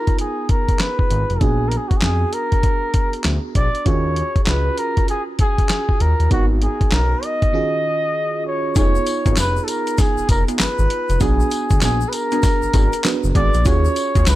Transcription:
Already playing: B3 D#4 F4 G#4 A#4
0.07 kick, closed hi-hat
0.19 G#4, closed hi-hat
0.49 A#4, kick, closed hi-hat
0.69 kick, closed hi-hat
0.79 B4, snare, clap, closed hi-hat
0.99 kick
1.10 G#1, closed hi-hat
1.30 F1, closed hi-hat
1.41 A#1 B3 D4 F#4 G#4, kick, closed hi-hat
1.69 A#4, closed hi-hat
1.77 G#4
1.89 F#4, kick, closed hi-hat
1.97 G#4
2.02 F2 G#4, snare, clap, closed hi-hat
2.33 A#4, closed hi-hat
2.52 kick, closed hi-hat
2.63 kick, closed hi-hat
2.94 kick, closed hi-hat
3.13 closed hi-hat
3.24 D2, snare, clap, closed hi-hat
3.55 A#1 D5, kick, closed hi-hat
3.75 closed hi-hat
3.85 D#2 C#4 F4 F#4 G#4 C#5, kick, closed hi-hat
4.16 closed hi-hat
4.36 kick, closed hi-hat
4.44 C#2 C#5, snare, clap, closed hi-hat
4.48 B4
4.78 A#4, closed hi-hat
4.97 kick, closed hi-hat
5.08 G#4, closed hi-hat
5.39 G#4, kick, closed hi-hat
5.58 kick, closed hi-hat
5.69 snare, clap, closed hi-hat
5.89 kick
6.00 D#2 A#4, closed hi-hat
6.20 D#2, closed hi-hat
6.30 G#1 B3 D#4 F#4 A#4, kick, closed hi-hat
6.62 G#4, closed hi-hat
6.81 kick, closed hi-hat
6.92 B1 A#4, snare, clap, closed hi-hat
7.23 D#5, closed hi-hat
7.42 kick, closed hi-hat
7.53 D#3 C#4 F4 F#4 G#4
8.47 C#5
8.75 F1 B3 D#4 F4 G#4 C#5, kick, closed hi-hat, tambourine, shaker
8.95 shaker
9.06 closed hi-hat, tambourine, shaker
9.26 G#1 B3 D#4 F4 G#4, kick, closed hi-hat, shaker
9.37 F1 B4, snare, clap, closed hi-hat, tambourine, shaker
9.56 shaker
9.64 A4, closed hi-hat, tambourine
9.69 A#4
9.87 closed hi-hat, shaker
9.98 G#4, kick, snare, closed hi-hat, tambourine, shaker
10.17 F1, shaker
10.29 F1 A#4, kick, closed hi-hat, tambourine
10.48 B3 D#4 F4 G#4, closed hi-hat, shaker
10.59 G#1 B4, snare, clap, closed hi-hat, tambourine, shaker
10.79 G#1, shaker
10.90 closed hi-hat
11.09 F1, closed hi-hat, shaker
11.20 A#1 B3 D4 F#4 G#4, kick, closed hi-hat, tambourine, shaker
11.40 shaker
11.51 closed hi-hat, tambourine, shaker
11.70 D2, kick, closed hi-hat, shaker
11.81 A#1 B3 D4 F#4 G#4, snare, clap, closed hi-hat, tambourine, shaker
12.01 shaker
12.09 B4, closed hi-hat, tambourine
12.14 A#4
12.32 B3 D4 F#4 G#4, closed hi-hat, shaker
12.43 kick, snare, closed hi-hat, tambourine, shaker
12.62 G#1, shaker
12.74 G#1 B3 D4 F#4 G#4, kick, closed hi-hat, tambourine
12.93 closed hi-hat, shaker
13.04 B3 D4 F#4 B4, snare, clap, closed hi-hat, tambourine, shaker
13.23 F#1, shaker
13.35 G#1 B3 D4 F#4 G#4 D5, kick, closed hi-hat
13.54 A#1, closed hi-hat, shaker
13.65 D#2 C#4 F4 F#4 G#4 C#5, kick, closed hi-hat, tambourine, shaker
13.85 shaker
13.96 closed hi-hat, tambourine, shaker
14.15 D#2 C#4 F4 F#4 G#4, kick, closed hi-hat, shaker
14.26 C#2 B4, snare, clap, closed hi-hat, tambourine, shaker

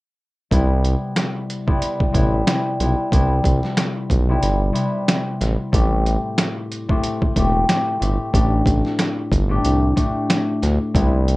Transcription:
0.51 C2 C3 G3 B3 E4, kick, closed hi-hat
0.85 closed hi-hat
1.16 snare, closed hi-hat
1.50 closed hi-hat
1.67 C3 G3 B3 E4, kick
1.82 closed hi-hat
2.00 kick
2.12 A1 C3 G3 B3 E4, kick, closed hi-hat
2.46 C3 G3 B3 E4, snare, closed hi-hat
2.80 B1 C3 G3 B3 E4, closed hi-hat
3.12 C2 C3 G3 B3 E4, kick, closed hi-hat
3.44 C2, kick, closed hi-hat
3.63 snare
3.77 snare, closed hi-hat
4.10 B1, kick, closed hi-hat
4.29 C3 G3 B3 E4
4.43 G1, closed hi-hat
4.73 C3 G3 B3 E4, closed hi-hat
5.08 snare, closed hi-hat
5.41 A1, snare, closed hi-hat
5.72 A1 A2 A3 C4 G4, kick, closed hi-hat
6.06 closed hi-hat
6.38 snare, closed hi-hat
6.72 closed hi-hat
6.88 A2 A3 C4 G4, kick
7.04 closed hi-hat
7.22 kick
7.36 E1 A2 A3 C4 G4, kick, closed hi-hat
7.68 A2 A3 C4 G4, snare, closed hi-hat
8.00 G1 A2 A3 C4 G4, closed hi-hat
8.33 A1 A2 A3 D4 G4, kick, closed hi-hat
8.66 A1, kick, closed hi-hat
8.85 snare
8.99 snare, closed hi-hat
9.32 G1, kick, closed hi-hat
9.49 A2 A3 D4 G4
9.65 C2, closed hi-hat
9.96 A2 A3 D4 G4, kick, closed hi-hat
10.30 snare, closed hi-hat
10.62 D2, snare, closed hi-hat
10.94 C2 C3 G3 B3 E4, kick, closed hi-hat
11.28 closed hi-hat

